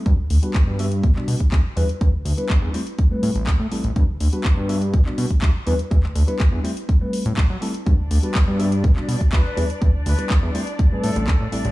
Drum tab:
HH |x-oxx-oxx-oxx-ox|x-oxx-oxx-oxx-ox|x-oxx-oxx-oxx-ox|x-oxx-oxx-oxx-ox|
CP |----x----x--x---|----x-------x---|----x----x--x---|-x--x-------x---|
BD |o---o---o--oo---|o---o---o---o---|o---o---o--oo---|o---o---o---o---|

HH |x-oxx-oxx-oxx-ox|x-oxx-oxx-oxx-ox|
CP |----x----x--x---|----x-------x---|
BD |o---o---o--oo---|o---o---o---o---|